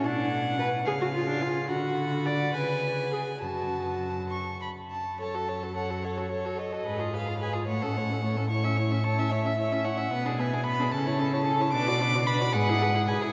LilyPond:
<<
  \new Staff \with { instrumentName = "Violin" } { \time 6/8 \key fis \minor \tempo 4. = 73 gis''4. gis''4. | b''2. | a''2~ a''8 r8 | a''4 fis''8 cis''4 dis''8~ |
dis''8 f''8 aes''8 fis''4. | cis'''4 a''8 e''4 fis''8~ | fis''8 gis''8 b''8 a''4. | d'''4 b''8 fis''4 gis''8 | }
  \new Staff \with { instrumentName = "Violin" } { \time 6/8 \key fis \minor fis''4. eis''4. | fis''4. gis''4. | a''4. cis'''8 b''8 a''8 | cis''16 a'16 cis''16 a'16 cis''16 a'16 cis''16 a'16 cis''16 a'16 cis''16 a'16 |
ces''16 aes'16 ces''16 aes'16 ces''16 aes'16 cis''16 a'16 cis''16 a'16 cis''16 a'16 | cis''16 e''16 cis''16 e''16 cis''16 e''16 cis''16 e''16 cis''16 e''16 cis''16 e''16 | b'16 gis'16 b'16 gis'16 b'16 gis'16 a'16 cis''16 a'16 cis''16 a'16 cis''16 | b'16 d''16 b'16 d''16 b'16 d''16 b'16 gis'16 b'16 gis'16 b'16 gis'16 | }
  \new Staff \with { instrumentName = "Viola" } { \time 6/8 \key fis \minor d'4 b'8 gis'16 fis'16 eis'16 d'16 eis'8 | fis'4 d''8 b'4 gis'8 | fis'4. r4. | a'16 fis'16 a'16 fis'16 a'16 fis'16 a'16 fis'16 a'16 fis'16 a'16 fis'16 |
aes'16 f'16 aes'16 f'16 aes'16 f'16 a16 cis'16 a16 cis'16 a16 cis'16 | e'16 cis'16 e'16 cis'16 e'16 cis'16 e'16 cis'16 e'16 cis'16 e'16 cis'16 | b16 d'16 b16 d'16 b16 d'16 cis'16 e'16 cis'16 e'16 cis'16 e'16 | d'16 fis'16 d'16 fis'16 d'16 fis'16 gis'16 e'16 gis'16 e'16 gis'16 e'16 | }
  \new Staff \with { instrumentName = "Cello" } { \clef bass \time 6/8 \key fis \minor b,4. cis4. | d4. cis4. | fis,2~ fis,8 r8 | fis,2. |
aes,4. a,4.~ | a,2. | b,4. cis4. | b,4. gis,4. | }
>>